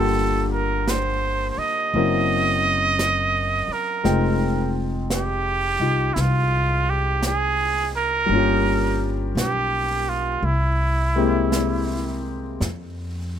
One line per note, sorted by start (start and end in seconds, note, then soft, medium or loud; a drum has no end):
0.00 1.53 G1 medium
0.00 1.94 D3 soft
0.00 1.93 G3 soft
0.00 1.94 A#3 soft
0.00 1.95 F4 soft
0.00 1.95 G4 medium
0.00 0.47 A4 medium
0.00 1.96 F5 soft
0.53 0.91 A#4 medium
0.88 1.50 C5 medium
0.88 brush sweep soft
0.88 snare soft
0.88 hi-hat pedal soft
1.50 1.60 C5 medium
1.57 3.74 D#5 loud
1.57 muted upright bass stroke soft
1.94 3.65 F#1 medium
1.94 4.06 F#3 soft
1.94 4.03 C4 soft
1.94 4.06 C#4 soft
1.94 4.06 E4 soft
1.94 4.06 A#4 soft
1.94 brush sweep soft
2.99 brush sweep soft
2.99 snare soft
2.99 hi-hat pedal soft
3.68 muted upright bass stroke soft
3.72 4.76 A#4 medium
4.04 5.76 F1 medium
4.04 8.29 G#3 soft
4.04 8.29 C4 soft
4.04 5.79 D#4 soft
4.04 5.80 F4 soft
4.04 8.29 G5 soft
4.04 brush sweep soft
4.04 snare soft
5.10 6.15 G4 medium
5.10 brush sweep soft
5.10 snare soft
5.10 hi-hat pedal soft
5.80 6.14 C2 medium
5.80 8.29 D#4 soft
5.80 8.30 F4 soft
6.14 8.25 C2 medium
6.14 6.22 E4 medium
6.14 brush sweep soft
6.14 snare soft
6.20 6.91 F4 medium
6.90 7.25 G4 medium
7.22 7.91 G#4 medium
7.22 brush sweep soft
7.22 snare soft
7.22 hi-hat pedal soft
7.96 9.15 A#4 medium
8.26 9.32 G1 medium
8.26 10.42 G3 soft
8.26 10.43 A#3 soft
8.26 brush sweep soft
8.32 10.45 C#4 soft
8.32 10.46 F4 soft
8.37 10.48 G4 medium
9.35 10.39 B1 medium
9.35 10.11 G4 medium
9.35 brush sweep soft
9.35 snare soft
9.35 hi-hat pedal soft
10.09 10.47 F4 medium
10.43 12.56 C2 medium
10.43 12.24 E4 medium
10.43 brush sweep soft
11.16 12.61 G#3 soft
11.16 12.62 A#3 soft
11.16 12.62 C4 soft
11.16 12.62 E4 soft
11.16 12.62 G4 soft
11.52 brush sweep soft
11.52 snare soft
11.52 hi-hat pedal soft
12.61 13.39 F2 medium
12.61 brush sweep soft
12.61 snare soft